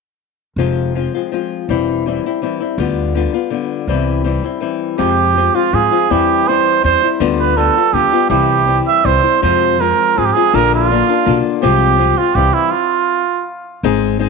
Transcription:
0.56 F1 F2 C3 F3 G#3 C4 F4
0.95 F3 G#3 C4 F4
1.14 F3 G#3 C4 F4
1.32 F3 G#3 C4 F4
1.69 E1 E3 G3 C4 E4
2.06 E3 G3 C4 E4
2.26 G3 C4 E4
2.42 E3 G3 C4 E4
2.60 G3 C4 E4
2.78 D2 D3 G3 B3 F4
3.15 D3 G3 B3 F4
3.34 G3 B3 F4
3.50 D3 G3 B3 F4
3.87 C2 C3 E3 G3 C4 E4
4.24 E3 G3 C4 E4
4.44 G3 C4 E4
4.60 E3 G3 C4 E4
4.98 F2 C3 F3 G#3 C4 F4 G4
5.36 F3 G#3 C4 F4
5.55 F3 G#3 C4 F4
5.72 G#2 F3 G#3 C4 F4 G#4
5.92 F3 G#3 C4 F4
6.10 E2 E3 G3 C4 E4 G4
6.47 E3 G3 C4 E4 C5
6.83 E2 E3 G3 C4 E4 C5
7.03 G3 C4 E4
7.20 D2 D3 G3 B3 F4
7.40 B4
7.57 D3 G3 B3 F4 A4
7.76 G3 B3 F4
7.93 D2 D3 G3 B3 F4 G4
8.13 G3 B3 F4
8.29 C2 C3 E3 G3 C4 E4 G4
8.66 E3 G3 C4 E4
8.87 E5
9.03 C2 E3 G3 C4 E4 C5
9.23 G3 C4 E4
9.42 F2 C3 F3 G#3 C4 F4 C5
9.79 F3 G#3 C4 F4 A#4
10.16 G#2 F3 G#3 C4 F4 G#4
10.25 G4
10.33 C4 F4 G#4
10.37 F3 G#3
10.53 A#1 A#2 D3 A#3 D4 F4 A#4
10.74 F4
10.91 D3 A#3 D4 F4
11.08 A#3 D4 F4
11.25 B1 D3 A#3 D4 F4
11.62 C2 C3 F3 G#3 C4 F4 G4
11.98 F3 G#3 C4 F4
12.17 G#3 C4 F4
12.35 C2 E3 G3 C4 E4 G4
12.54 E4
12.71 F4
13.83 G#1 G#3 C4 D#4 G#4
14.19 G#3 C4 D#4 G#4

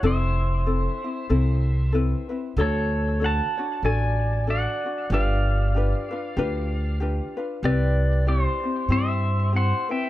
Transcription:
0.03 F1 C4 E4 A4 E5
0.07 C5
0.66 C4 E4 A4
1.04 C4 E4
1.29 C2 C4 E4 A4
1.93 C4 E4 A4 B4
2.29 C4 E4 B4
2.57 D2 D4 F#4 A4 C#5
2.61 A4 C#5
3.20 D4 F#4 A4 C#5
3.24 F#5 A5
3.57 D4 F#4 C#5
3.83 A1 D4 F#4 A4 D5 G#5
4.47 D4 F#4 A4 D5 F#5
4.86 D4 F#4
5.10 G1 D4 F4 G4 B4 D5
5.14 F5
5.74 D4 F4 G4 B4
6.11 D4 F4 B4
6.37 D2 D4 F4 G4 B4
7.00 D4 F4 G4 B4
7.37 D4 F4 B4
7.63 C2 C4 E4 G4 B4 D5
7.67 B4
8.27 C4 E4 G4 C5
8.64 C4 E4
8.89 G2 C4 E4 G4 E5
8.93 C5
9.52 C4 E4 G4
9.56 C5 F#5
9.89 C4 E4 B4 E5 G5

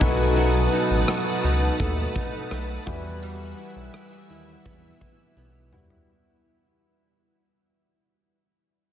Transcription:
Already playing: B3
0.00 B1 B2 F#3 D#4 F#4 A4 B4 F#5 A5 D#6, kick, closed hi-hat
0.37 F#3 F#4, closed hi-hat
0.72 D#4, closed hi-hat
0.90 A1
1.08 F#4, cross-stick, closed hi-hat
1.44 C#2 D#4, closed hi-hat
1.80 D#2 A3, kick, closed hi-hat
2.16 D#4, kick, closed hi-hat
2.51 B1 A3, cross-stick, closed hi-hat
2.86 E2 E3 G3 E4 F#4 B4 E5 E6, kick, closed hi-hat
3.23 G3 F#4, closed hi-hat
3.58 E4, closed hi-hat
3.76 B1
3.94 E4, cross-stick, closed hi-hat
4.12 F#4
4.29 D#2 E4, closed hi-hat
4.66 E2 B3, kick, closed hi-hat
5.01 E4, kick, closed hi-hat
5.36 B1 B3, high tom
5.72 D#2 G3 E4 F#4 B4, mid tom
5.90 floor tom

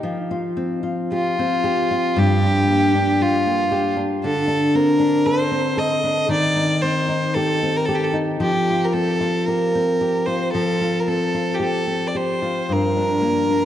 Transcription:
Already playing: A#3 D#4 G4
0.03 F3
0.31 F4
0.57 C4
0.83 F4
1.12 F4 G4
1.39 C4
1.64 G4
1.91 F4
2.16 G2 G4
2.42 D4
2.68 A#3
2.95 D4
3.22 F4 G4
3.47 A#3
3.72 G4
3.97 D4
4.24 D3 A4
4.48 D4
4.75 C4 A#4
4.99 D4
5.26 A4 C5
5.51 C4
5.77 A4 D#5
6.04 D4
6.29 D#3 D5
6.56 D#4
6.82 C4 C5
7.09 D#4
7.34 G4 A4
7.63 C4
7.77 A#4
7.85 G4 A4
7.95 G4
8.04 A4
8.13 D#4
8.40 F3 G4
8.70 F4
8.85 A#4
8.93 C4 A4
9.21 F4
9.47 G4 A#4
9.75 C4
10.01 G4
10.25 F4 C5
10.52 F3 A4
10.81 F4
11.00 A#4
11.08 C4 A4
11.35 F4
11.54 G4
11.60 G4 A4
11.87 C4
12.07 D5
12.15 G4 C5
12.42 F4
12.62 C5
12.69 G2 A#4
12.96 D4
13.21 A#3
13.50 D4

